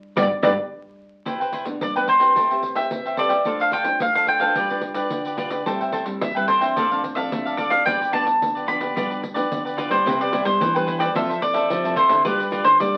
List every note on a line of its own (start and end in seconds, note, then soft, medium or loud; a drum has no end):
0.16 0.27 G2 medium
0.16 0.25 G3 medium
0.16 0.25 B3 medium
0.16 0.25 D4 loud
0.16 0.25 G4 loud
0.16 0.25 B4 medium
0.16 0.26 D5 medium
0.16 0.26 D5 loud
0.16 pandeiro medium
0.42 0.54 G2 loud
0.42 0.52 G3 medium
0.42 0.52 B3 medium
0.42 0.52 D4 medium
0.42 0.52 G4 medium
0.42 0.52 B4 medium
0.42 0.52 D5 medium
0.42 pandeiro medium
1.25 1.78 C3 medium
1.25 1.39 E4 soft
1.25 1.39 B4 medium
1.25 1.39 C5 medium
1.25 1.39 G5 medium
1.25 pandeiro medium
1.40 1.52 B4 soft
1.40 1.52 C5 soft
1.40 1.53 G5 soft
1.40 pandeiro soft
1.52 1.64 E4 soft
1.52 1.65 B4 medium
1.52 1.65 C5 soft
1.52 1.65 G5 medium
1.52 pandeiro soft
1.65 1.90 E3 soft
1.65 1.90 B3 soft
1.65 1.90 D4 soft
1.65 muted cavaquinho stroke soft
1.65 pandeiro medium
1.81 2.33 G2 medium
1.81 1.95 D5 medium
1.81 pandeiro medium
1.96 2.18 E3 soft
1.96 2.19 B3 soft
1.96 2.19 D4 soft
1.96 2.08 B4 soft
1.96 2.08 B4 medium
1.96 2.07 C5 soft
1.96 2.08 G5 soft
1.96 pandeiro soft
2.08 2.21 E4 soft
2.08 2.20 B4 soft
2.08 2.21 C5 soft
2.08 2.73 C5 medium
2.08 2.19 G5 soft
2.08 pandeiro soft
2.20 2.44 C4 medium
2.20 2.45 G4 medium
2.20 2.45 B4 medium
2.20 2.35 B4 soft
2.20 2.35 C5 soft
2.20 2.34 G5 medium
2.20 pandeiro medium
2.36 2.88 A3 medium
2.36 2.49 A4 soft
2.36 2.49 C5 medium
2.36 2.49 E5 medium
2.36 2.49 G5 medium
2.36 pandeiro medium
2.50 2.73 C4 soft
2.50 2.74 G4 soft
2.50 2.74 B4 medium
2.50 2.62 C5 soft
2.50 2.62 E5 soft
2.50 2.62 G5 soft
2.50 pandeiro soft
2.63 muted cavaquinho stroke soft
2.63 pandeiro soft
2.75 3.14 C4 soft
2.75 3.14 G4 medium
2.75 3.14 B4 medium
2.75 3.04 C5 soft
2.75 3.15 E5 medium
2.75 3.03 E5 soft
2.75 3.03 G5 medium
2.75 pandeiro medium
2.91 3.43 E3 medium
2.91 pandeiro medium
3.06 3.17 C5 soft
3.06 3.17 E5 soft
3.06 3.17 G5 soft
3.06 pandeiro soft
3.17 3.34 C4 soft
3.17 3.34 G4 soft
3.17 3.31 A4 soft
3.17 3.35 B4 soft
3.17 3.29 C5 medium
3.17 3.57 D5 medium
3.17 3.29 E5 soft
3.17 3.28 G5 medium
3.17 pandeiro soft
3.29 3.44 C5 soft
3.29 3.44 E5 soft
3.29 3.43 G5 soft
3.29 pandeiro medium
3.45 3.98 A3 medium
3.45 3.72 D4 soft
3.45 3.59 D4 medium
3.45 3.72 F4 soft
3.45 3.59 A4 medium
3.45 3.72 C5 soft
3.45 3.59 C5 medium
3.45 3.59 F5 medium
3.45 pandeiro medium
3.60 3.71 A4 soft
3.60 3.71 C5 soft
3.60 3.72 F5 soft
3.60 3.73 F5 medium
3.60 pandeiro soft
3.71 3.84 D4 medium
3.71 3.84 A4 medium
3.71 3.84 C5 medium
3.71 3.84 F5 medium
3.71 3.99 G5 medium
3.71 pandeiro soft
3.84 4.09 D4 medium
3.84 4.10 F4 soft
3.84 4.10 C5 medium
3.84 muted cavaquinho stroke soft
3.84 pandeiro medium
4.00 4.53 A3 medium
4.00 4.14 F5 medium
4.00 pandeiro medium
4.15 4.38 D4 soft
4.15 4.38 F4 soft
4.15 4.26 A4 soft
4.15 4.27 C5 soft
4.15 4.39 C5 soft
4.15 4.27 F5 soft
4.15 4.28 F5 medium
4.15 pandeiro soft
4.27 4.41 D4 soft
4.27 4.40 A4 soft
4.27 4.40 C5 soft
4.27 4.39 F5 soft
4.27 5.35 G5 medium
4.27 pandeiro soft
4.40 4.65 D4 medium
4.40 4.65 F4 medium
4.40 4.55 A4 soft
4.40 4.65 B4 medium
4.40 4.54 C5 soft
4.40 4.54 F5 medium
4.40 pandeiro medium
4.55 5.08 G3 medium
4.55 4.69 F4 medium
4.55 4.69 G4 medium
4.55 4.69 B4 medium
4.55 4.69 D5 medium
4.55 pandeiro medium
4.70 4.93 D4 soft
4.70 4.93 F4 soft
4.70 4.82 G4 soft
4.70 4.94 B4 medium
4.70 4.82 B4 soft
4.70 4.82 D5 soft
4.70 pandeiro soft
4.81 muted cavaquinho stroke soft
4.81 pandeiro soft
4.94 5.33 D4 soft
4.94 5.33 F4 medium
4.94 5.23 G4 soft
4.94 5.23 B4 soft
4.94 5.34 B4 medium
4.94 5.23 D5 medium
4.94 pandeiro medium
5.10 5.63 D3 medium
5.10 pandeiro medium
5.25 5.37 G4 soft
5.25 5.37 B4 soft
5.25 5.38 D5 soft
5.25 pandeiro soft
5.37 5.54 D4 soft
5.37 5.51 F4 medium
5.37 5.55 F4 soft
5.37 5.51 G4 medium
5.37 5.50 B4 medium
5.37 5.55 B4 medium
5.37 5.49 D5 medium
5.37 pandeiro soft
5.50 5.65 G4 soft
5.50 5.64 B4 soft
5.50 5.64 D5 soft
5.50 pandeiro medium
5.66 6.18 A2 medium
5.66 6.03 G3 soft
5.66 6.03 C4 soft
5.66 6.03 E4 soft
5.66 5.79 A4 medium
5.66 5.79 C5 medium
5.66 5.79 E5 medium
5.66 5.79 G5 medium
5.66 pandeiro medium
5.81 5.92 C5 soft
5.81 5.92 E5 soft
5.81 5.93 G5 soft
5.81 pandeiro soft
5.92 6.04 A4 medium
5.92 6.05 C5 medium
5.92 6.05 E5 medium
5.92 6.05 G5 medium
5.92 pandeiro soft
6.05 6.29 G3 medium
6.05 6.30 C4 soft
6.05 6.30 E4 medium
6.05 muted cavaquinho stroke soft
6.05 pandeiro medium
6.21 6.73 E3 medium
6.21 6.34 E5 medium
6.21 pandeiro medium
6.35 6.58 G3 soft
6.35 6.59 C4 soft
6.35 6.59 E4 medium
6.35 6.47 B4 medium
6.35 6.47 C5 soft
6.35 6.48 E5 soft
6.35 6.48 G5 soft
6.35 pandeiro soft
6.48 6.61 A4 soft
6.48 7.13 C5 medium
6.48 6.61 C5 soft
6.48 6.61 E5 soft
6.48 6.60 G5 soft
6.48 pandeiro soft
6.60 6.85 F3 soft
6.60 6.85 C4 medium
6.60 6.85 D4 medium
6.60 6.75 C5 soft
6.60 6.75 E5 medium
6.60 6.74 G5 medium
6.60 pandeiro medium
6.76 7.28 A2 medium
6.76 6.89 D4 medium
6.76 6.89 A4 medium
6.76 6.89 D5 medium
6.76 6.90 F5 medium
6.76 pandeiro medium
6.90 7.13 F3 soft
6.90 7.13 C4 soft
6.90 7.14 D4 medium
6.90 7.03 A4 soft
6.90 7.03 D5 soft
6.90 7.03 F5 soft
6.90 pandeiro soft
7.04 muted cavaquinho stroke soft
7.04 pandeiro soft
7.15 7.53 F3 soft
7.15 7.53 C4 medium
7.15 7.54 D4 medium
7.15 7.44 A4 soft
7.15 7.43 D5 soft
7.15 7.55 E5 medium
7.15 7.43 F5 medium
7.15 pandeiro medium
7.31 7.83 A2 medium
7.31 pandeiro medium
7.45 7.57 A4 soft
7.45 7.57 D5 soft
7.45 7.58 F5 soft
7.45 pandeiro soft
7.57 7.81 F3 soft
7.57 7.81 C4 soft
7.57 7.71 D4 medium
7.57 7.82 D4 medium
7.57 7.70 A4 soft
7.57 7.71 D5 medium
7.57 7.70 D5 medium
7.57 7.69 F5 medium
7.57 pandeiro medium
7.70 7.85 A4 soft
7.70 7.84 D5 soft
7.70 7.84 F5 soft
7.70 7.84 F5 medium
7.70 pandeiro medium
7.86 8.38 G2 medium
7.86 8.02 F3 soft
7.86 8.02 B3 soft
7.86 8.03 D4 medium
7.86 7.99 F4 medium
7.86 7.99 G4 medium
7.86 7.99 B4 medium
7.86 7.99 D5 medium
7.86 8.13 G5 medium
7.86 pandeiro medium
8.01 8.12 G4 soft
8.01 8.12 B4 soft
8.01 8.13 D5 soft
8.01 pandeiro soft
8.12 8.64 F3 medium
8.12 8.64 B3 medium
8.12 8.64 D4 medium
8.12 8.24 F4 medium
8.12 8.24 G4 medium
8.12 8.24 B4 medium
8.12 8.25 D5 medium
8.12 8.68 A5 medium
8.12 pandeiro soft
8.25 muted cavaquinho stroke soft
8.25 pandeiro medium
8.41 8.93 D3 medium
8.41 pandeiro medium
8.55 8.66 G4 soft
8.55 8.66 B4 soft
8.55 8.67 D5 soft
8.55 pandeiro soft
8.66 8.91 F3 soft
8.66 8.91 B3 soft
8.66 8.91 D4 soft
8.66 8.80 F4 soft
8.66 8.80 G4 soft
8.66 8.79 B4 soft
8.66 8.78 D5 soft
8.66 9.74 B5 medium
8.66 pandeiro soft
8.79 8.94 G4 soft
8.79 8.94 B4 medium
8.79 8.94 D5 medium
8.79 pandeiro medium
8.95 9.48 G2 medium
8.95 9.22 F3 soft
8.95 9.22 B3 soft
8.95 9.22 D4 medium
8.95 9.09 F4 medium
8.95 9.09 G4 medium
8.95 9.09 B4 medium
8.95 9.09 D5 medium
8.95 pandeiro medium
9.10 9.21 G4 soft
9.10 9.21 B4 soft
9.10 9.22 D5 soft
9.10 pandeiro soft
9.22 muted cavaquinho stroke soft
9.22 pandeiro soft
9.34 9.46 F3 soft
9.34 9.46 B3 soft
9.34 9.46 D4 medium
9.34 9.63 G4 soft
9.34 9.62 B4 soft
9.34 9.62 D5 medium
9.34 pandeiro medium
9.51 10.03 D3 medium
9.51 9.88 F3 soft
9.51 9.88 B3 soft
9.51 9.88 D4 soft
9.51 pandeiro medium
9.65 9.77 G4 soft
9.65 9.77 B4 soft
9.65 9.77 D5 soft
9.65 pandeiro soft
9.77 9.90 F4 medium
9.77 9.91 G4 medium
9.77 9.90 B4 medium
9.77 9.91 B4 medium
9.77 9.89 D5 medium
9.77 pandeiro medium
9.90 10.28 G3 medium
9.90 10.28 B3 soft
9.90 10.28 E4 medium
9.90 10.05 G4 soft
9.90 10.04 B4 soft
9.90 10.20 C5 medium
9.90 10.04 D5 soft
9.90 pandeiro medium
10.06 10.58 C3 soft
10.06 10.41 C3 medium
10.06 10.19 E4 medium
10.06 10.19 B4 medium
10.06 10.19 C5 medium
10.06 10.19 G5 medium
10.06 pandeiro medium
10.20 10.32 B4 soft
10.20 10.31 C5 soft
10.20 10.45 D5 medium
10.20 10.32 G5 soft
10.20 pandeiro soft
10.32 10.69 G3 medium
10.32 10.70 B3 medium
10.32 10.44 E4 medium
10.32 10.70 E4 medium
10.32 10.44 B4 medium
10.32 10.44 C5 medium
10.32 10.44 G5 medium
10.32 pandeiro medium
10.45 10.58 G3 medium
10.45 10.75 C5 medium
10.45 muted cavaquinho stroke soft
10.45 pandeiro medium
10.60 11.13 G2 soft
10.60 11.07 E3 medium
10.60 pandeiro medium
10.74 11.11 G3 soft
10.74 11.12 B3 medium
10.74 11.12 E4 medium
10.74 10.86 B4 soft
10.74 10.99 B4 medium
10.74 10.85 C5 soft
10.74 10.86 G5 soft
10.74 pandeiro soft
10.86 11.00 E4 soft
10.86 10.98 B4 soft
10.86 10.99 C5 medium
10.86 10.98 G5 soft
10.86 pandeiro medium
10.99 11.13 B4 medium
10.99 11.14 C5 soft
10.99 11.14 D5 medium
10.99 11.13 G5 medium
10.99 pandeiro medium
11.15 11.67 F3 soft
11.15 11.39 F3 medium
11.15 11.31 C4 medium
11.15 11.32 E4 medium
11.15 11.28 F4 medium
11.15 11.28 A4 medium
11.15 11.32 A4 medium
11.15 11.28 C5 medium
11.15 11.41 E5 medium
11.15 11.28 E5 medium
11.15 pandeiro medium
11.29 11.40 A4 soft
11.29 11.41 C5 soft
11.29 11.41 E5 soft
11.29 pandeiro soft
11.41 11.68 C4 medium
11.41 11.68 E4 soft
11.41 11.69 A4 medium
11.41 11.97 D5 medium
11.41 muted cavaquinho stroke soft
11.41 pandeiro medium
11.53 11.82 A4 medium
11.53 11.82 C5 medium
11.53 11.81 E5 medium
11.53 pandeiro medium
11.70 12.22 C3 soft
11.70 11.94 F3 medium
11.70 pandeiro medium
11.84 12.21 C4 medium
11.84 12.21 E4 medium
11.84 12.21 A4 medium
11.84 11.95 A4 soft
11.84 11.96 C5 soft
11.84 11.96 E5 soft
11.84 pandeiro soft
11.95 12.09 F4 medium
11.95 12.09 A4 medium
11.95 12.08 C5 medium
11.95 12.23 C5 medium
11.95 12.08 E5 medium
11.95 pandeiro medium
12.09 12.22 D3 medium
12.09 12.24 A4 soft
12.09 12.23 C5 soft
12.09 12.23 E5 soft
12.09 pandeiro medium
12.25 12.77 G3 soft
12.25 12.60 G3 medium
12.25 12.41 D4 medium
12.25 12.38 F4 medium
12.25 12.41 F4 medium
12.25 12.38 G4 medium
12.25 12.64 B4 medium
12.25 12.41 B4 medium
12.25 12.38 B4 medium
12.25 12.38 D5 medium
12.25 pandeiro medium
12.39 12.51 G4 soft
12.39 12.52 B4 soft
12.39 12.52 D5 soft
12.39 pandeiro soft
12.51 12.89 D4 medium
12.51 12.63 F4 medium
12.51 12.89 F4 soft
12.51 12.64 G4 medium
12.51 12.89 B4 medium
12.51 12.64 B4 medium
12.51 12.64 D5 medium
12.51 pandeiro medium
12.64 12.77 D3 medium
12.64 12.78 C5 medium
12.64 muted cavaquinho stroke soft
12.64 pandeiro medium
12.80 12.97 D3 medium
12.80 12.97 G3 medium
12.80 12.97 D5 medium
12.80 pandeiro medium
12.94 12.97 D4 soft
12.94 12.97 D5 soft